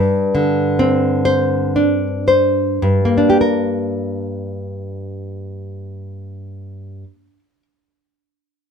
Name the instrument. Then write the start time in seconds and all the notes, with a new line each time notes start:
nylon-string guitar
Already playing: G2
0.35 D3
0.79 C4
1.25 C5
1.76 D4
2.28 C5
2.82 G2
3.05 A#3
3.18 D4
3.30 G4
3.41 A#4